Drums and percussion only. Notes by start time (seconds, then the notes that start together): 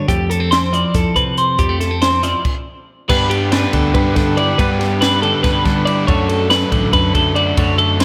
0.09 kick, closed hi-hat
0.31 closed hi-hat
0.52 snare, closed hi-hat
0.74 closed hi-hat
0.94 kick, snare, closed hi-hat
1.16 kick, closed hi-hat
1.37 closed hi-hat
1.59 kick, closed hi-hat
1.81 snare, closed hi-hat
2.02 snare, closed hi-hat
2.23 snare, closed hi-hat
2.45 kick, crash
3.09 kick, crash
3.31 ride
3.52 snare, ride
3.73 kick, ride
3.94 kick, ride
4.16 kick, snare, ride
4.37 ride
4.59 kick, ride
4.81 snare, ride
5.02 snare, ride
5.23 ride
5.44 kick, snare, ride
5.65 kick, snare, ride
5.87 ride
6.08 kick, ride
6.29 ride
6.50 snare, ride
6.72 kick, ride
6.93 kick, ride
7.15 kick, ride
7.36 ride
7.57 kick, ride
7.79 ride
8.00 snare, ride